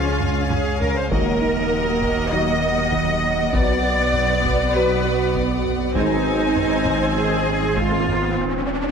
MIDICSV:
0, 0, Header, 1, 13, 480
1, 0, Start_track
1, 0, Tempo, 606061
1, 878, Time_signature, 4, 2, 24, 8
1, 7058, End_track
2, 0, Start_track
2, 0, Title_t, "Violin section"
2, 0, Program_c, 0, 48
2, 0, Note_on_c, 0, 80, 52
2, 848, Note_off_c, 0, 80, 0
2, 893, Note_on_c, 0, 78, 66
2, 4694, Note_off_c, 0, 78, 0
2, 4717, Note_on_c, 0, 80, 86
2, 6606, Note_off_c, 0, 80, 0
2, 7058, End_track
3, 0, Start_track
3, 0, Title_t, "Violin section"
3, 0, Program_c, 1, 48
3, 0, Note_on_c, 1, 77, 60
3, 845, Note_off_c, 1, 77, 0
3, 877, Note_on_c, 1, 75, 73
3, 2766, Note_off_c, 1, 75, 0
3, 2793, Note_on_c, 1, 74, 73
3, 4684, Note_off_c, 1, 74, 0
3, 4719, Note_on_c, 1, 72, 70
3, 6607, Note_off_c, 1, 72, 0
3, 7058, End_track
4, 0, Start_track
4, 0, Title_t, "Cello section"
4, 0, Program_c, 2, 48
4, 0, Note_on_c, 2, 65, 76
4, 396, Note_off_c, 2, 65, 0
4, 396, Note_on_c, 2, 68, 84
4, 635, Note_on_c, 2, 70, 88
4, 637, Note_off_c, 2, 68, 0
4, 754, Note_off_c, 2, 70, 0
4, 763, Note_on_c, 2, 72, 77
4, 877, Note_on_c, 2, 70, 102
4, 881, Note_off_c, 2, 72, 0
4, 1818, Note_off_c, 2, 70, 0
4, 1837, Note_on_c, 2, 75, 102
4, 2797, Note_off_c, 2, 75, 0
4, 2797, Note_on_c, 2, 74, 113
4, 3754, Note_on_c, 2, 71, 94
4, 3757, Note_off_c, 2, 74, 0
4, 4236, Note_off_c, 2, 71, 0
4, 4708, Note_on_c, 2, 63, 102
4, 5641, Note_off_c, 2, 63, 0
4, 5668, Note_on_c, 2, 68, 91
4, 6143, Note_off_c, 2, 68, 0
4, 6152, Note_on_c, 2, 65, 103
4, 6635, Note_off_c, 2, 65, 0
4, 7058, End_track
5, 0, Start_track
5, 0, Title_t, "French horn section"
5, 0, Program_c, 3, 60
5, 0, Note_on_c, 3, 61, 59
5, 0, Note_on_c, 3, 68, 61
5, 92, Note_off_c, 3, 61, 0
5, 95, Note_off_c, 3, 68, 0
5, 884, Note_on_c, 3, 66, 68
5, 885, Note_on_c, 3, 58, 69
5, 1049, Note_off_c, 3, 66, 0
5, 1050, Note_off_c, 3, 58, 0
5, 1844, Note_on_c, 3, 58, 64
5, 1845, Note_on_c, 3, 66, 68
5, 2009, Note_off_c, 3, 58, 0
5, 2010, Note_off_c, 3, 66, 0
5, 2805, Note_on_c, 3, 66, 79
5, 2809, Note_on_c, 3, 59, 79
5, 2970, Note_off_c, 3, 66, 0
5, 2972, Note_off_c, 3, 59, 0
5, 3765, Note_on_c, 3, 66, 76
5, 3769, Note_on_c, 3, 59, 68
5, 3930, Note_off_c, 3, 66, 0
5, 3932, Note_off_c, 3, 59, 0
5, 4719, Note_on_c, 3, 60, 70
5, 4723, Note_on_c, 3, 63, 75
5, 4886, Note_off_c, 3, 60, 0
5, 4888, Note_off_c, 3, 63, 0
5, 5676, Note_on_c, 3, 60, 70
5, 5679, Note_on_c, 3, 63, 64
5, 5844, Note_off_c, 3, 60, 0
5, 5846, Note_off_c, 3, 63, 0
5, 7058, End_track
6, 0, Start_track
6, 0, Title_t, "Ambient pad"
6, 0, Program_c, 4, 92
6, 0, Note_on_c, 4, 49, 74
6, 0, Note_on_c, 4, 56, 66
6, 0, Note_on_c, 4, 68, 69
6, 0, Note_on_c, 4, 73, 75
6, 875, Note_off_c, 4, 56, 0
6, 876, Note_off_c, 4, 68, 0
6, 877, Note_on_c, 4, 66, 73
6, 879, Note_on_c, 4, 54, 75
6, 879, Note_on_c, 4, 75, 78
6, 881, Note_on_c, 4, 58, 80
6, 882, Note_off_c, 4, 49, 0
6, 882, Note_off_c, 4, 73, 0
6, 2786, Note_on_c, 4, 59, 89
6, 2790, Note_on_c, 4, 71, 74
6, 2798, Note_off_c, 4, 75, 0
6, 2799, Note_off_c, 4, 58, 0
6, 4708, Note_on_c, 4, 63, 80
6, 4708, Note_on_c, 4, 75, 81
6, 4711, Note_on_c, 4, 60, 78
6, 4712, Note_off_c, 4, 59, 0
6, 4713, Note_on_c, 4, 56, 85
6, 4714, Note_off_c, 4, 71, 0
6, 4717, Note_off_c, 4, 66, 0
6, 4718, Note_off_c, 4, 54, 0
6, 6633, Note_off_c, 4, 63, 0
6, 6633, Note_off_c, 4, 75, 0
6, 6634, Note_off_c, 4, 60, 0
6, 6636, Note_off_c, 4, 56, 0
6, 7058, End_track
7, 0, Start_track
7, 0, Title_t, "Viola section"
7, 0, Program_c, 5, 48
7, 0, Note_on_c, 5, 61, 62
7, 848, Note_off_c, 5, 61, 0
7, 879, Note_on_c, 5, 58, 70
7, 2767, Note_off_c, 5, 58, 0
7, 2792, Note_on_c, 5, 59, 77
7, 4683, Note_off_c, 5, 59, 0
7, 4711, Note_on_c, 5, 60, 71
7, 6603, Note_off_c, 5, 60, 0
7, 7058, End_track
8, 0, Start_track
8, 0, Title_t, "Synth pluck"
8, 0, Program_c, 6, 84
8, 163, Note_on_c, 6, 56, 63
8, 305, Note_off_c, 6, 56, 0
8, 400, Note_on_c, 6, 49, 90
8, 543, Note_off_c, 6, 49, 0
8, 884, Note_on_c, 6, 51, 89
8, 1026, Note_off_c, 6, 51, 0
8, 1123, Note_on_c, 6, 63, 60
8, 1265, Note_off_c, 6, 63, 0
8, 1599, Note_on_c, 6, 51, 84
8, 1743, Note_off_c, 6, 51, 0
8, 1839, Note_on_c, 6, 63, 64
8, 1983, Note_off_c, 6, 63, 0
8, 2073, Note_on_c, 6, 58, 67
8, 2218, Note_off_c, 6, 58, 0
8, 2313, Note_on_c, 6, 51, 95
8, 2458, Note_off_c, 6, 51, 0
8, 2796, Note_on_c, 6, 59, 105
8, 2941, Note_off_c, 6, 59, 0
8, 3034, Note_on_c, 6, 71, 62
8, 3179, Note_off_c, 6, 71, 0
8, 3513, Note_on_c, 6, 59, 82
8, 3659, Note_off_c, 6, 59, 0
8, 3755, Note_on_c, 6, 71, 62
8, 3900, Note_off_c, 6, 71, 0
8, 3997, Note_on_c, 6, 66, 67
8, 4141, Note_off_c, 6, 66, 0
8, 4234, Note_on_c, 6, 59, 96
8, 4379, Note_off_c, 6, 59, 0
8, 4718, Note_on_c, 6, 56, 98
8, 4862, Note_off_c, 6, 56, 0
8, 4956, Note_on_c, 6, 68, 66
8, 5101, Note_off_c, 6, 68, 0
8, 5438, Note_on_c, 6, 56, 89
8, 5582, Note_off_c, 6, 56, 0
8, 5676, Note_on_c, 6, 68, 67
8, 5820, Note_off_c, 6, 68, 0
8, 5912, Note_on_c, 6, 63, 73
8, 6058, Note_off_c, 6, 63, 0
8, 6148, Note_on_c, 6, 56, 87
8, 6295, Note_off_c, 6, 56, 0
8, 7058, End_track
9, 0, Start_track
9, 0, Title_t, "Trombone section"
9, 0, Program_c, 7, 61
9, 0, Note_on_c, 7, 49, 68
9, 0, Note_on_c, 7, 53, 62
9, 80, Note_off_c, 7, 49, 0
9, 80, Note_off_c, 7, 53, 0
9, 878, Note_on_c, 7, 54, 72
9, 881, Note_on_c, 7, 51, 65
9, 1045, Note_off_c, 7, 54, 0
9, 1047, Note_off_c, 7, 51, 0
9, 1838, Note_on_c, 7, 51, 73
9, 1840, Note_on_c, 7, 54, 70
9, 2005, Note_off_c, 7, 51, 0
9, 2006, Note_off_c, 7, 54, 0
9, 2793, Note_on_c, 7, 54, 71
9, 2797, Note_on_c, 7, 47, 74
9, 2962, Note_off_c, 7, 54, 0
9, 2965, Note_off_c, 7, 47, 0
9, 3753, Note_on_c, 7, 47, 72
9, 3758, Note_on_c, 7, 54, 69
9, 3922, Note_off_c, 7, 47, 0
9, 3925, Note_off_c, 7, 54, 0
9, 4719, Note_on_c, 7, 56, 69
9, 4721, Note_on_c, 7, 51, 69
9, 4886, Note_off_c, 7, 56, 0
9, 4887, Note_off_c, 7, 51, 0
9, 5670, Note_on_c, 7, 56, 65
9, 5672, Note_on_c, 7, 51, 71
9, 5840, Note_off_c, 7, 56, 0
9, 5841, Note_off_c, 7, 51, 0
9, 7058, End_track
10, 0, Start_track
10, 0, Title_t, "Double bass section"
10, 0, Program_c, 8, 48
10, 0, Note_on_c, 8, 37, 63
10, 880, Note_off_c, 8, 37, 0
10, 888, Note_on_c, 8, 39, 70
10, 2800, Note_on_c, 8, 35, 72
10, 2803, Note_off_c, 8, 39, 0
10, 4687, Note_off_c, 8, 35, 0
10, 4724, Note_on_c, 8, 32, 74
10, 6609, Note_off_c, 8, 32, 0
10, 7058, End_track
11, 0, Start_track
11, 0, Title_t, "Sub bass"
11, 0, Program_c, 10, 38
11, 0, Note_on_c, 10, 37, 72
11, 882, Note_on_c, 10, 27, 72
11, 894, Note_off_c, 10, 37, 0
11, 2794, Note_on_c, 10, 35, 75
11, 2806, Note_off_c, 10, 27, 0
11, 4717, Note_on_c, 10, 32, 77
11, 4729, Note_off_c, 10, 35, 0
11, 6632, Note_on_c, 10, 27, 78
11, 6644, Note_off_c, 10, 32, 0
11, 7058, Note_off_c, 10, 27, 0
11, 7058, End_track
12, 0, Start_track
12, 0, Title_t, "Riser"
12, 0, Program_c, 11, 103
12, 4715, Note_on_c, 11, 60, 65
12, 7058, Note_off_c, 11, 60, 0
12, 7058, End_track
13, 0, Start_track
13, 0, Title_t, "Taiko and cinematic ensemble drums"
13, 162, Note_on_c, 9, 45, 76
13, 242, Note_off_c, 9, 45, 0
13, 401, Note_on_c, 9, 45, 93
13, 480, Note_off_c, 9, 45, 0
13, 646, Note_on_c, 9, 43, 83
13, 725, Note_off_c, 9, 43, 0
13, 881, Note_on_c, 9, 41, 95
13, 960, Note_off_c, 9, 41, 0
13, 1597, Note_on_c, 9, 41, 75
13, 1676, Note_off_c, 9, 41, 0
13, 2314, Note_on_c, 9, 41, 81
13, 2393, Note_off_c, 9, 41, 0
13, 2797, Note_on_c, 9, 41, 96
13, 2876, Note_off_c, 9, 41, 0
13, 3276, Note_on_c, 9, 45, 50
13, 3355, Note_off_c, 9, 45, 0
13, 3517, Note_on_c, 9, 41, 76
13, 3596, Note_off_c, 9, 41, 0
13, 4236, Note_on_c, 9, 41, 79
13, 4315, Note_off_c, 9, 41, 0
13, 4479, Note_on_c, 9, 45, 45
13, 4559, Note_off_c, 9, 45, 0
13, 4712, Note_on_c, 9, 41, 94
13, 4791, Note_off_c, 9, 41, 0
13, 5194, Note_on_c, 9, 45, 50
13, 5273, Note_off_c, 9, 45, 0
13, 5435, Note_on_c, 9, 41, 82
13, 5514, Note_off_c, 9, 41, 0
13, 6154, Note_on_c, 9, 41, 80
13, 6233, Note_off_c, 9, 41, 0
13, 6393, Note_on_c, 9, 45, 43
13, 6472, Note_off_c, 9, 45, 0
13, 7058, End_track
0, 0, End_of_file